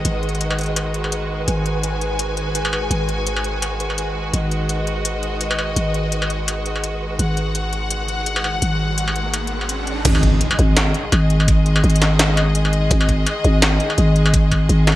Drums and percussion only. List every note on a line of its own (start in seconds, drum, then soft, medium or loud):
0.05 closed hi-hat medium
0.23 closed hi-hat soft
0.29 closed hi-hat soft
0.35 closed hi-hat soft
0.41 closed hi-hat medium
0.51 struck metal medium
0.59 closed hi-hat soft
0.61 closed hi-hat soft
0.63 closed hi-hat soft
0.66 closed hi-hat soft
0.76 closed hi-hat medium
0.76 struck metal soft
0.94 closed hi-hat soft
1.04 struck metal soft
1.12 closed hi-hat medium
1.48 closed hi-hat medium
1.66 closed hi-hat soft
1.83 closed hi-hat medium
2.01 closed hi-hat soft
2.19 closed hi-hat medium
2.37 closed hi-hat soft
2.55 closed hi-hat medium
2.65 struck metal medium
2.73 struck metal medium
2.91 closed hi-hat medium
3.09 closed hi-hat soft
3.27 closed hi-hat medium
3.36 struck metal soft
3.44 closed hi-hat soft
3.62 closed hi-hat medium
3.62 struck metal soft
3.80 closed hi-hat soft
3.90 struck metal soft
3.98 closed hi-hat medium
4.34 closed hi-hat medium
4.51 closed hi-hat soft
4.69 closed hi-hat medium
4.87 closed hi-hat soft
5.05 closed hi-hat medium
5.23 closed hi-hat soft
5.41 closed hi-hat medium
5.51 struck metal medium
5.59 struck metal medium
5.76 closed hi-hat medium
5.94 closed hi-hat soft
6.12 closed hi-hat medium
6.22 struck metal medium
6.30 closed hi-hat soft
6.48 closed hi-hat medium
6.48 struck metal soft
6.66 closed hi-hat soft
6.76 struck metal soft
6.84 closed hi-hat medium
7.19 closed hi-hat medium
7.37 closed hi-hat soft
7.55 closed hi-hat medium
7.73 closed hi-hat soft
7.91 closed hi-hat medium
8.08 closed hi-hat soft
8.26 closed hi-hat medium
8.36 struck metal medium
8.44 struck metal medium
8.62 closed hi-hat medium
8.98 closed hi-hat medium
9.08 struck metal medium
9.16 closed hi-hat soft
9.34 closed hi-hat medium
9.34 struck metal soft
9.47 closed hi-hat soft
9.61 struck metal soft
9.69 closed hi-hat medium
9.87 closed hi-hat soft
10.05 kick loud
10.05 closed hi-hat medium
10.05 crash loud
10.15 struck metal medium
10.23 kick medium
10.23 closed hi-hat soft
10.41 closed hi-hat medium
10.51 struck metal medium
10.59 closed hi-hat soft
10.77 snare loud
10.77 closed hi-hat medium
10.77 struck metal medium
10.94 closed hi-hat soft
11.12 closed hi-hat medium
11.12 struck metal medium
11.30 closed hi-hat soft
11.40 struck metal medium
11.48 kick loud
11.48 closed hi-hat medium
11.66 closed hi-hat soft
11.76 struck metal medium
11.84 closed hi-hat soft
11.90 closed hi-hat soft
11.96 closed hi-hat medium
12.02 snare medium
12.02 closed hi-hat soft
12.02 struck metal medium
12.19 snare loud
12.19 closed hi-hat medium
12.37 closed hi-hat soft
12.37 struck metal medium
12.55 closed hi-hat medium
12.65 struck metal medium
12.73 closed hi-hat soft
12.91 kick loud
12.91 closed hi-hat medium
13.01 struck metal medium
13.09 kick medium
13.09 closed hi-hat soft
13.27 closed hi-hat medium
13.27 struck metal medium
13.44 closed hi-hat soft
13.62 snare loud
13.62 closed hi-hat medium
13.62 struck metal medium
13.80 closed hi-hat soft
13.90 struck metal medium
13.98 closed hi-hat medium
14.16 closed hi-hat soft
14.26 struck metal medium
14.34 kick loud
14.34 closed hi-hat medium
14.52 kick medium
14.52 closed hi-hat soft
14.52 struck metal medium
14.69 closed hi-hat medium
14.87 snare medium
14.87 closed hi-hat soft
14.87 struck metal soft
14.90 struck metal soft
14.92 struck metal soft